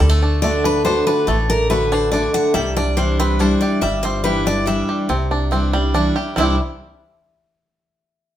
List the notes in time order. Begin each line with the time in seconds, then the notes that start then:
Already playing: D4
0.00 D2 D3 G3 A4
0.09 A3
0.22 D4
0.42 D3 A3 D4 F#4 D5
0.64 D4 B4
0.85 D3 A3 D4 F#4 C5
1.07 D4 B4
1.27 A1 A2 A3 A4
1.49 D4 A#4
1.70 D3 A3 D4 F#4 B4
1.92 D4 C5
2.12 D3 A3 D4 F#4 D5
2.34 D4 F#5
2.54 C2 C3 G3 E5
2.77 D4 D5
2.97 E3 G3 D4 E4 C5
3.19 C4 B4
3.39 E3 G3 D4 E4 C5
3.61 G4 D5
3.81 G1 G2 G3 E5
4.03 C4 C5
4.24 E3 G3 D4 E4 G4 B4
4.46 D4 E4 D5
4.66 E3 G3 D4 E4 E5
4.89 G4
5.09 C2 C3 C4
5.31 D4
5.51 E3 G3 C4 D4 E4
5.73 G3 D4 E4
5.94 E3 G3 D4 E4
6.16 D4 E4 G4
6.36 C2 C3 E3 G3 C4 D4 E4 E5
6.40 E4 G4